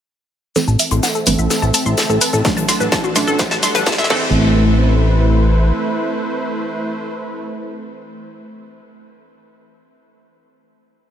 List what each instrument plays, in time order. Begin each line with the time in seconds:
0.56 synth stab E3 A3 C4, analog synth pad C4 A4 E5 A5, synth arpeggio sound A4, snare, mid tom, tambourine, riser, shaker
0.67 analog synth bass A1, synth arpeggio sound A5, shaker
0.79 synth arpeggio sound E5, open hi-hat, tambourine, shaker
0.91 analog synth bass A1, synth arpeggio sound C6, closed hi-hat, mid tom, shaker
1.03 synth arpeggio sound F#5, snare, tambourine, shaker
1.15 synth arpeggio sound A4, shaker
1.26 analog synth bass G1, synth stab E3 A3 C4, synth arpeggio sound B4, mid tom, open hi-hat, tambourine, shaker
1.38 analog synth bass A1, synth arpeggio sound E5, shaker
1.50 synth arpeggio sound A4, snare, tambourine, shaker
1.62 analog synth bass A1, synth arpeggio sound A5, mid tom, shaker
1.74 synth arpeggio sound A5, open hi-hat, tambourine, shaker
1.86 analog synth bass A1, synth arpeggio sound C6, shaker
1.97 synth arpeggio sound A4, snare, mid tom, tambourine, shaker
2.09 analog synth bass A1, synth arpeggio sound A4, shaker
2.21 synth arpeggio sound B4, open hi-hat, tambourine, shaker
2.33 analog synth bass A1, synth arpeggio sound A4, snare, mid tom, shaker
2.45 synth stab F#3 A3 D4, analog synth pad D4 A4 F#5, synth arpeggio sound A4, kick, snare, tambourine, shaker
2.57 analog synth bass A1, synth arpeggio sound A5, closed hi-hat, shaker
2.68 synth arpeggio sound C6, snare, mid tom, open hi-hat, tambourine, shaker
2.80 analog synth bass A1, synth arpeggio sound B4, snare, shaker
2.92 synth arpeggio sound A5, kick, snare, tambourine, shaker
3.04 synth arpeggio sound F#4, mid tom, shaker
3.16 analog synth bass A1, synth stab F#3 A3 D4, synth arpeggio sound C6, snare, open hi-hat, tambourine, shaker
3.27 analog synth bass A1, synth arpeggio sound A4, shaker
3.39 synth arpeggio sound C5, kick, snare, tambourine, shaker
3.51 analog synth bass A1, synth arpeggio sound A5, snare, shaker
3.63 synth arpeggio sound C6, snare, open hi-hat, tambourine, shaker
3.75 analog synth bass A1, synth arpeggio sound B4, snare, closed hi-hat, mid tom, shaker
3.86 synth arpeggio sound A5, kick, snare, tambourine, shaker
3.92 snare
3.98 analog synth bass A1, synth arpeggio sound E5, snare, shaker
4.04 snare
4.10 analog synth bass A1, synth stab E3 A3 C4, analog synth pad A3 E4 B4 C5, synth arpeggio sound A4, kick, crash